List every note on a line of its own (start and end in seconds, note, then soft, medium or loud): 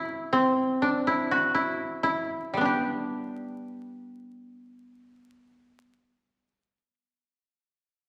0.00 0.32 C4 medium
0.00 0.82 D4 medium
0.00 1.07 E4 medium
0.00 1.23 F#4 medium
0.33 2.63 C4 medium
0.82 2.61 D4 medium
1.07 1.54 E4 medium
1.31 2.59 F#4 medium
1.55 2.03 E4 medium
2.03 4.30 E4 medium
2.53 5.82 G3 soft
2.53 5.86 B3 soft
2.61 5.90 D4 soft
2.65 5.94 G4 soft